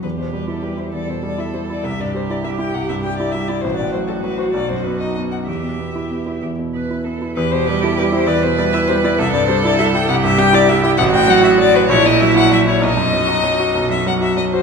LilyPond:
<<
  \new Staff \with { instrumentName = "Violin" } { \time 6/8 \key e \minor \tempo 4. = 66 b'16 c''16 b'16 a'16 b'16 c''16 d''16 c''16 d''16 e''16 c''16 d''16 | e''16 d''16 c''16 d''16 e''16 g''16 fis''16 e''16 g''16 d''16 e''16 d''16 | c''16 d''16 c''16 a'16 b'16 c''16 d''16 c''16 b'16 dis''16 dis''16 fis''16 | e''4. r4. |
b'16 c''16 b'16 a'16 b'16 c''16 d''16 c''16 d''16 e''16 c''16 d''16 | e''16 d''16 c''16 d''16 e''16 g''16 fis''16 e''16 g''16 d''16 e''16 g''16 | fis''16 g''16 fis''16 e''16 d''16 b'16 cis''16 dis''16 e''16 fis''16 e''16 cis''16 | dis''4.~ dis''16 e''16 fis''16 e''16 dis''16 c''16 | }
  \new Staff \with { instrumentName = "Cello" } { \time 6/8 \key e \minor g'4. a'4. | g'2. | fis'2. | g'4. g'8 b'8 a'8 |
g'4. b'4. | a'4. g'4. | fis'4. e'4. | dis'2~ dis'16 r8. | }
  \new Staff \with { instrumentName = "Grand piano" } { \clef bass \time 6/8 \key e \minor e,16 b,16 g16 e'16 g16 e'16 e,16 b,16 g16 e'16 g16 e'16 | c,16 g,16 g16 e'16 g16 e'16 c,16 g,16 g16 e'16 g16 e'16 | a,,16 a,16 fis16 fis'16 fis16 fis'16 b,,16 fis,16 b16 dis'16 b16 dis'16 | e,16 b,16 b16 e'16 b16 e'16 e,16 b,16 b16 e'16 b16 e'16 |
e,16 b,16 g16 e'16 g16 e'16 e,16 b,16 g16 e'16 g16 e'16 | c,16 g,16 g16 e'16 g16 e'16 c,16 g,16 g16 e'16 g16 e'16 | a,,16 a,16 fis16 fis'16 fis16 fis'16 ais,,16 ais,16 fis16 e'16 fis16 e'16 | b,,16 fis,16 fis16 fis'16 fis16 fis'16 b,,16 fis,16 fis16 fis'16 fis16 fis'16 | }
>>